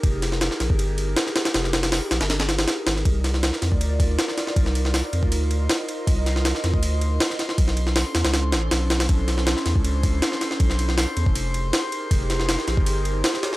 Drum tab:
RD |x-x-x-x-x-x-x-xx|x-xx--xxxxxxx-x-|x-x-x-x-x-x-x-x-|x-x---x-x-x-x-x-|
HH |----------------|----o-----------|----------------|----o-----------|
SD |--ooooo-----oooo|ooooo-ooooooo-oo|--ooooo-----oooo|-o-oo-------o---|
BD |o------o--------|----------------|o------o--o-----|o------o--------|

RD |x-x-x-x-x-x-x-x-|x-x---xxx-x-x-xx|x-x-x-x-x-x-x-x-|x-x---x-x-x-x-x-|
HH |----------------|----o-----------|----------------|----o-----------|
SD |--ooooo-----oooo|-o-oo-ooo-o-o-oo|--ooooo-----oooo|-o-oo-------o---|
BD |o------o--------|o---------------|o------o--o-----|o------o--------|

RD |x-x-x-x-x-x-x-x-|
HH |----------------|
SD |--ooooo-----oooo|
BD |o------o--------|